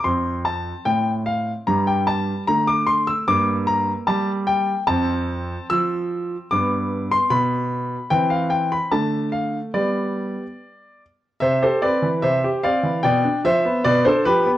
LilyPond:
<<
  \new Staff \with { instrumentName = "Grand piano" } { \time 2/4 \key g \dorian \tempo 4 = 74 c'''8 a''8 g''8 f''8 | bes''16 g''16 a''8 bes''16 d'''16 c'''16 e'''16 | d'''8 bes''8 a''8 g''8 | \key c \major a''4 e'''4 |
d'''8. c'''16 b''4 | g''16 f''16 g''16 b''16 a''8 f''8 | d''4. r8 | <c'' e''>16 <a' c''>16 <b' d''>8 <c'' e''>8 <d'' f''>8 |
<d'' g''>8 <c'' e''>8 <b' d''>16 <a' c''>16 <g' b'>8 | }
  \new Staff \with { instrumentName = "Grand piano" } { \clef bass \time 2/4 \key g \dorian << { c'2 | g4 a4 | bes2 | \key c \major c'2 |
b2 | c'4 a4 | r2 | r2 |
r2 | } \\ { f,4 a,4 | g,4 d4 | g,4 g4 | f,4 f4 |
g,4 b,4 | e4 d4 | <g b g'>4 r4 | c16 g'16 c'16 e16 c16 g'16 c'16 e16 |
b,16 d'16 f16 b16 b,16 d'16 f16 b16 | } >> }
>>